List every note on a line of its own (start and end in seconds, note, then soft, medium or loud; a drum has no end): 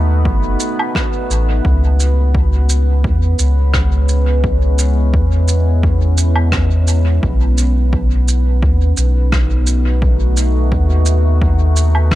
0.00 0.27 D#2 medium
0.00 1.65 A3 medium
0.00 12.15 B3 medium
0.00 1.65 D#4 medium
0.00 3.73 F#4 medium
0.00 12.15 B4 medium
0.25 0.56 F#1 medium
0.25 kick loud
0.60 shaker medium
0.79 low woodblock medium
0.95 kick medium
0.95 cross-stick medium
1.30 1.61 A1 medium
1.30 shaker medium
1.65 3.06 C#2 loud
1.65 7.23 G#3 medium
1.65 kick loud
1.93 9.19 C#4 medium
2.00 shaker medium
2.35 kick loud
2.69 shaker medium
3.04 3.35 E2 medium
3.04 kick loud
3.24 7.23 E4 medium
3.39 5.15 C#2 medium
3.39 shaker medium
3.74 kick loud
3.74 cross-stick medium
4.09 shaker medium
4.44 kick loud
4.79 shaker medium
5.14 7.20 E2 medium
5.14 kick loud
5.48 shaker medium
5.83 kick loud
6.18 shaker medium
6.36 low woodblock medium
6.52 kick loud
6.52 cross-stick medium
6.87 shaker medium
7.23 8.64 B1 medium
7.23 12.15 A3 medium
7.23 kick loud
7.58 shaker medium
7.70 12.15 D#4 medium
7.77 12.15 F#4 medium
7.93 kick loud
8.28 shaker medium
8.62 8.93 D#2 medium
8.62 kick loud
8.97 10.73 B1 medium
8.97 shaker medium
9.32 kick loud
9.32 cross-stick medium
9.67 shaker medium
10.02 kick loud
10.37 shaker medium
10.72 12.15 D#2 medium
10.72 kick loud
11.06 shaker medium
11.42 kick loud
11.76 shaker medium
11.95 low woodblock medium
12.11 kick loud
12.11 cross-stick medium